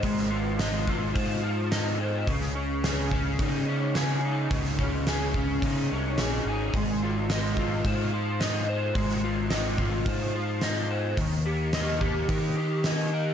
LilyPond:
<<
  \new Staff \with { instrumentName = "Overdriven electric guitar" } { \time 4/4 \key aes \major \tempo 4 = 108 <aes f' c'' ees''>8 f'8 ees''8 f'8 c''8 f'8 ees''8 c''8 | des8 des'8 aes'8 des'8 ees'8 des'8 aes'8 ees'8 | des8 des'8 aes'8 des'8 ees'8 des'8 aes'8 ees'8 | aes8 f'8 ees''8 f'8 c''8 f'8 ees''8 c''8 |
aes8 f'8 ees''8 f'8 c''8 f'8 ees''8 c''8 | ees8 g'8 ees''8 g'8 bes'8 g'8 ees''8 bes'8 | }
  \new Staff \with { instrumentName = "Fingered electric bass" } { \clef bass \time 4/4 \key aes \major aes,,2 aes,2 | des,2 des2 | des,2 des8 c,8 bes,,8 aes,,8 | aes,,2 aes,2 |
aes,,2 aes,2 | ees,2 ees2 | }
  \new DrumStaff \with { instrumentName = "Drums" } \drummode { \time 4/4 <hho bd>16 sn8. <hho sn>8 bd8 <hho bd>4 <hho sn>4 | <hho bd>16 sn8. <hho sn>8 bd8 <hho bd>4 <hho sn>4 | <hho bd>16 sn16 bd8 <hho sn>8 bd8 <hho bd>4 <hho sn>4 | <hho bd>4 <hho sn>8 bd8 <hho bd>4 <hho sn>4 |
<hho bd>16 sn8. <hho sn>8 bd8 <hho bd>4 <hho sn>4 | <hho bd>4 <hho sn>8 bd8 <hho bd>4 <hho sn>4 | }
>>